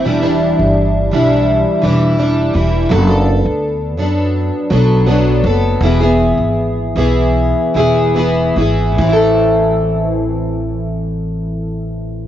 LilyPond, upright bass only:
\new Staff \with { instrumentName = "Upright bass" } { \clef bass \time 4/4 \key a \dorian \tempo 4 = 80 e,,8. g,,8. b,,8. r16 e,,4 e,,8 | fis,,8. d,8. fis,8. r16 b,,4 fis,,8 | e,,8. gis,,8. b,,8. r16 e,,4 gis,,8 | a,,1 | }